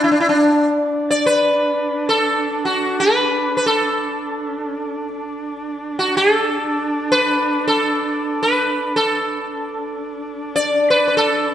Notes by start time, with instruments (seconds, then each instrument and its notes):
Already playing: horsehead fiddle D4
0.04 sitar E4
0.12 sitar D4
0.20 sitar E4
0.29 sitar D4
0.84 horsehead fiddle D4
1.11 sitar D5
1.26 sitar B4
2.09 sitar A4
2.65 sitar F#4
3.00 sitar B4
3.57 sitar B4
3.66 sitar A4
5.16 horsehead fiddle D4
5.99 sitar F#4
6.17 sitar A4
7.12 sitar B4
7.68 sitar A4
8.43 sitar B4
8.96 sitar A4
9.51 horsehead fiddle D4
10.56 sitar D5
10.90 sitar B4
11.08 sitar B4
11.17 sitar A4